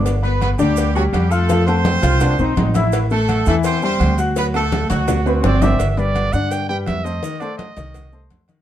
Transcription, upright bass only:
\new Staff \with { instrumentName = "Upright bass" } { \clef bass \time 4/4 \key g \major \tempo 4 = 167 g,,4. d,4. f,4~ | f,4. c,4 b,,8 a,,4~ | a,,4. e,4. d,4~ | d,4. d,4. g,,4 |
g,,4. g,4. f,4 | r4. c,4. f,4 | }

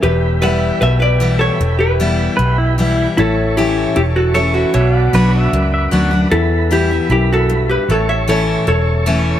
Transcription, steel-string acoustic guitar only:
\new Staff \with { instrumentName = "Steel-string acoustic guitar" } { \time 4/4 \key e \dorian \tempo 4 = 153 << { r4 <e g b e'>4 r4 <e g b e'>4 | r4 <e g b e'>4 r4 <e g b e'>4 | r4 <e a cis' e'>4 r4 <e a cis' e'>4 | r4 <fis b d' fis'>4 r4 <fis b d' fis'>8 <d' fis'>8 |
r4 <e g b e'>8 <b e'>8 r2 | r4 <e a cis' e'>4 r4 <e a cis' e'>4 | } \\ { e,2 b,2 | e,2 b,2 | a,2 e,2 | b,2 fis,2 |
e,2 fis,4 g,4 | a,2 e,2 | } >> }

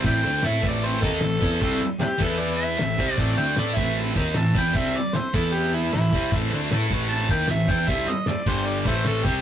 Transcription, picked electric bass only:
\new Staff \with { instrumentName = "Picked electric bass" } { \clef bass \time 4/4 \key a \minor \tempo 4 = 153 a,,8 d,8 a,8 a,,4 dis,8 a,,8 e,8 | c,8 r4 e,4. a,,8 c,8 | a,,8 d,8 a,8 a,,4 dis,8 a,,8 e,8 | c,8 r4 e,4. a,,8 c,8 |
a,,8 d,8 a,8 a,,4 dis,8 a,,8 e,8 | c,8 r4 g,,4 a,,4 c,8 | }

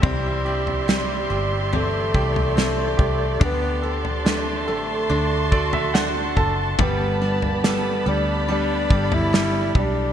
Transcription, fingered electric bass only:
\new Staff \with { instrumentName = "Fingered electric bass" } { \clef bass \time 4/4 \key g \major \tempo 4 = 71 c,4. g,,4 c,4 c,8 | d,4. a,,8 d,4. fis,,8 | g,,4. d,4 g,,4 b,,8 | }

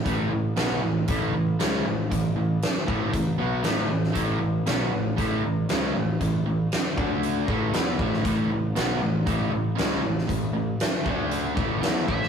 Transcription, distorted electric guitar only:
\new Staff \with { instrumentName = "Distorted electric guitar" } { \clef bass \time 4/4 \key a \major \tempo 4 = 117 <a, e a>8 <a, e>8 <b, fis b>8 <a, e>8 <a, e a>8 <a, e>8 <cis gis cis'>8 <a, e>8 | <a, e>8 <a, e>8 r8 <a, e a>8 <a, e>8 <b, fis b>8 <a, e a>8 <a, e>8 | <a, e a>8 <a, e>8 <b, fis b>8 <a, e>8 <a, e a>8 <a, e>8 <cis gis cis'>8 <a, e>8 | <a, e>8 <a, e>8 r8 <d a d'>4 <a, e a>8 <e b e'>8 <a, e a>8 |
<a, e a>8 <a, e>8 <b, fis b>8 <a, e>8 <a, e a>8 <a, e>8 <cis gis cis'>8 <a, e>8 | <a, e>8 <a, e>8 r8 <d a d'>4 <a, e a>8 <e b e'>8 <a, e a>8 | }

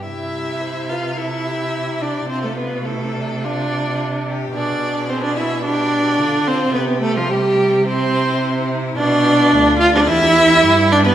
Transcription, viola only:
\new Staff \with { instrumentName = "Viola" } { \time 4/4 \key c \major \tempo 4 = 108 e'4. f'8 e'4. d'8 | c'16 a16 b8 a4 d'4. r8 | d'4 c'16 d'16 e'8 d'4. c'8 | b8 a16 f16 g4 c'4. r8 |
d'4. f'16 d'16 e'4. d'16 b16 | }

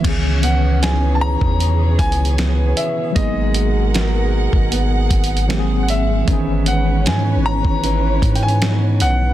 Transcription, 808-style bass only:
\new Staff \with { instrumentName = "808-style bass" } { \clef bass \time 4/4 \key cis \dorian \tempo 4 = 77 cis,4.~ cis,16 e,8. cis,4 r8 | gis,,4.~ gis,,16 gis,,8. gis,,4. | gis,,4 gis,16. gis,,16. gis,,8. gis,4 b,,8 | }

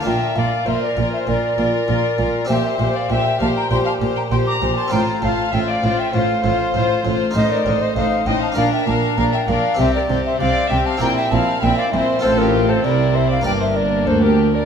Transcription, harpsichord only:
<<
  \new Staff \with { instrumentName = "Harpsichord" } { \time 4/4 \key f \major \tempo 4 = 98 <bes d' f'>1 | <c' g' c''>1 | <c' f' c''>1 | <ees' f' c''>2 <d' f' bes'>2 |
<c' g'>2 <c' e' g'>2 | <c' f' a'>2 <bes d' bes'>2 | }
  \new Staff \with { instrumentName = "Harpsichord" } { \clef bass \time 4/4 \key f \major bes,8 bes,8 bes,8 bes,8 bes,8 bes,8 bes,8 bes,8 | bes,8 bes,8 bes,8 bes,8 bes,8 bes,8 bes,8 bes,8 | a,8 a,8 a,8 a,8 a,8 a,8 a,8 a,8 | a,8 a,8 a,8 a,8 bes,8 bes,8 bes,8 bes,8 |
c8 c8 c8 c8 bes,8 bes,8 bes,8 bes,8 | a,4 c4 g,4 d,4 | }
>>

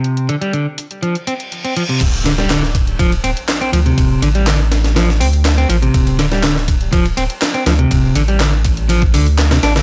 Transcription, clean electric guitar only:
\new Staff \with { instrumentName = "Clean electric guitar" } { \clef bass \time 4/4 \key d \minor \tempo 4 = 122 c8 d16 g16 d16 r8. f16 r16 c'16 r8 c'16 f16 c16 | r8 d16 g16 d16 r8. f16 r16 c'16 r8 c'16 f16 c16~ | c8 d16 g16 d16 r8. f16 r16 c'16 r8 c'16 f16 c16~ | c8 d16 g16 d16 r8. f16 r16 c'16 r8 c'16 f16 c16~ |
c8 d16 g16 d16 r8. f16 r16 d16 r8 c16 d'16 d16 | }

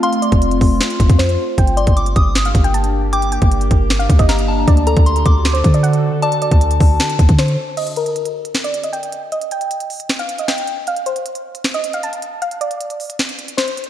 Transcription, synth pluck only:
\new Staff \with { instrumentName = "Synth pluck" } { \time 4/4 \key d \phrygian \tempo 4 = 155 f''8 d''2~ d''8 c''4 | g''8 d''4.~ d''16 f''8 g''16 a''8 r8 | g''8 g''4.~ g''16 f''8 ees''16 f''8 r8 | d''8 a'4.~ a'16 c''8 d''16 fis''8 r8 |
d''8 d''2~ d''8 c''4 | ees''8 bes'4.~ bes'16 d''8 ees''16 g''8 r8 | ees''8 g''4.~ g''16 f''8 ees''16 g''8 r8 | f''8 c''4.~ c''16 ees''8 f''16 a''8 r8 |
f''8 d''2~ d''8 c''4 | }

